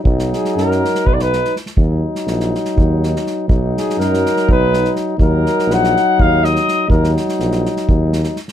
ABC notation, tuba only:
X:1
M:7/8
L:1/8
Q:1/4=123
K:Ebm
V:1 name="Tuba" clef=bass
=B,,,2 ^F,,2 B,,,3 | E,,2 B,,,2 E,,3 | =B,,,2 ^F,,2 B,,,3 | E,,2 B,,,2 E,,3 |
E,,2 B,,,2 E,,3 |]